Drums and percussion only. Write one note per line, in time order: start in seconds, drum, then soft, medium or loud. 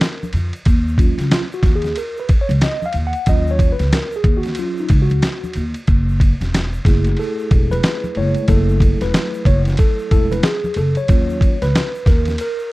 0.01 snare loud
0.01 hi-hat pedal soft
0.01 ride medium
0.01 shaker medium
0.23 high conga medium
0.23 shaker medium
0.32 ride medium
0.32 low conga medium
0.32 shaker soft
0.53 ride soft
0.53 shaker soft
0.65 kick medium
0.65 ride medium
0.65 shaker medium
0.88 shaker soft
0.98 kick medium
0.98 ride medium
0.98 high conga soft
0.98 shaker soft
1.19 snare soft
1.19 ride soft
1.19 shaker medium
1.32 snare loud
1.32 hi-hat pedal medium
1.32 ride medium
1.32 high conga soft
1.32 shaker medium
1.52 shaker soft
1.63 kick loud
1.63 snare soft
1.63 ride medium
1.63 low conga medium
1.63 shaker soft
1.82 snare soft
1.82 ride soft
1.82 shaker soft
1.96 ride medium
1.96 shaker medium
2.17 shaker soft
2.29 kick medium
2.29 ride medium
2.29 shaker soft
2.49 ride soft
2.49 high conga medium
2.49 shaker medium
2.61 snare loud
2.61 hi-hat pedal soft
2.61 ride medium
2.61 shaker medium
2.82 high conga medium
2.82 shaker soft
2.93 ride medium
2.93 low conga medium
2.93 shaker soft
3.13 ride soft
3.13 shaker soft
3.26 kick medium
3.26 ride medium
3.26 shaker medium
3.47 shaker soft
3.59 kick medium
3.59 ride medium
3.59 high conga soft
3.59 shaker soft
3.79 snare soft
3.79 ride soft
3.79 shaker soft
3.92 snare loud
3.92 hi-hat pedal medium
3.92 ride medium
3.92 high conga soft
3.92 shaker medium
4.12 shaker medium
4.24 kick loud
4.24 ride medium
4.24 low conga medium
4.24 shaker soft
4.43 snare soft
4.43 ride soft
4.43 shaker soft
4.55 ride medium
4.55 shaker medium
4.77 shaker soft
4.89 kick medium
4.89 ride medium
4.89 shaker soft
5.10 ride soft
5.10 high conga medium
5.10 shaker medium
5.22 snare loud
5.22 hi-hat pedal medium
5.22 ride medium
5.22 shaker medium
5.44 high conga medium
5.44 shaker medium
5.53 ride medium
5.53 low conga medium
5.53 shaker soft
5.74 ride soft
5.74 shaker soft
5.87 kick loud
5.87 ride medium
5.87 shaker medium
6.08 shaker medium
6.20 kick medium
6.20 ride medium
6.20 high conga soft
6.20 shaker soft
6.41 snare soft
6.41 ride soft
6.41 shaker soft
6.54 snare loud
6.54 hi-hat pedal medium
6.54 ride medium
6.54 high conga soft
6.54 shaker medium
6.73 shaker soft
6.85 kick loud
6.85 snare soft
6.85 ride medium
6.85 low conga medium
6.85 shaker soft
7.05 snare soft
7.05 ride soft
7.05 shaker soft
7.17 ride medium
7.17 shaker medium
7.39 shaker soft
7.51 kick medium
7.51 ride medium
7.51 shaker soft
7.71 ride soft
7.71 high conga medium
7.71 shaker medium
7.83 snare loud
7.83 hi-hat pedal medium
7.83 ride medium
7.83 shaker medium
8.04 high conga medium
8.04 shaker soft
8.15 ride medium
8.15 low conga medium
8.15 shaker soft
8.34 ride soft
8.34 shaker soft
8.48 kick medium
8.48 ride medium
8.48 shaker medium
8.69 shaker soft
8.80 kick medium
8.80 ride medium
8.80 high conga soft
8.80 shaker medium
9.01 snare soft
9.01 ride soft
9.01 shaker soft
9.14 snare loud
9.14 hi-hat pedal medium
9.14 ride medium
9.14 high conga soft
9.14 shaker medium
9.34 shaker medium
9.45 kick medium
9.45 ride medium
9.45 low conga medium
9.45 shaker soft
9.65 snare soft
9.65 ride soft
9.65 shaker soft
9.77 kick medium
9.77 ride medium
9.77 shaker medium
9.99 shaker soft
10.11 kick medium
10.11 ride medium
10.11 shaker soft
10.32 ride soft
10.32 high conga medium
10.32 shaker medium
10.43 snare loud
10.43 hi-hat pedal medium
10.43 ride medium
10.43 shaker medium
10.64 high conga medium
10.64 shaker soft
10.74 ride medium
10.74 low conga medium
10.74 shaker soft
10.95 ride soft
10.95 shaker soft
11.08 kick loud
11.08 ride medium
11.08 shaker medium
11.29 shaker soft
11.41 kick medium
11.41 ride medium
11.41 high conga soft
11.41 shaker soft
11.62 snare soft
11.62 ride soft
11.62 shaker soft
11.75 snare loud
11.75 hi-hat pedal medium
11.75 ride medium
11.75 high conga soft
11.75 shaker medium
11.95 shaker medium
12.06 kick loud
12.06 snare soft
12.06 ride medium
12.06 low conga medium
12.06 shaker soft
12.26 snare soft
12.26 ride soft
12.26 shaker soft
12.38 ride medium
12.38 shaker medium
12.59 shaker soft